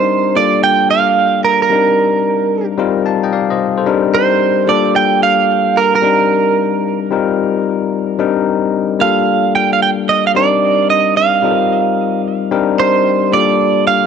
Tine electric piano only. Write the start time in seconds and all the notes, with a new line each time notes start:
Already playing: G3 C4 D4 D#4 A#4
0.35 G3 A#3 D4 F4 A4
1.70 G3 C4 D4 D#4 A#4
2.78 G3 C4 D#4 F4 A#4
3.06 F5 A5
3.24 D#5 G5
3.33 D5 F5
3.51 C5 D#5
3.78 A4 C5
3.86 G3 C4 D4 D#4 A#4
4.67 G3 A#3 D4 F4 A4
6.02 G3 C4 D4 D#4 A#4
7.10 G3 C4 D#4 F4 A#4
8.19 G3 C4 D4 D#4 A#4
8.99 G3 A#3 D4 F4 A4
10.35 G3 C4 D4 D#4 A#4
11.42 G3 C4 D#4 F4 A4
11.51 A#4
12.51 G3 C4 D4 D#4 A#4
13.32 G3 A#3 D4 F4 A4